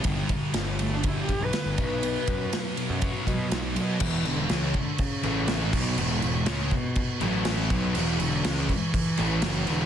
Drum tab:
CC |--------|--------|xxxxxxxx|xxxxxxxx|
RD |xxxxxxxx|xxxxxxxx|--------|--------|
SD |--o---o-|--o---o-|--o---o-|--o---o-|
BD |oo--oo-o|-o--oo--|o--oo--o|---oo--o|

CC |xxxxxxxx|
RD |--------|
SD |--o---o-|
BD |---oo---|